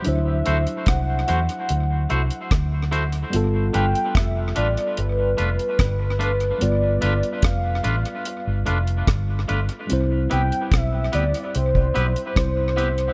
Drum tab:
HH |x-xxx-xxx-xxx-xx|x-xxx-xxx-xxx-xx|x-xxx-xxx-xxx-xx|x-xxx-xxx-xxx-xx|
SD |----r-------r---|----r-------r---|----r-------r---|----r-------r---|
BD |----o-------o---|----o-------o---|----o-------o---|----o----o--o---|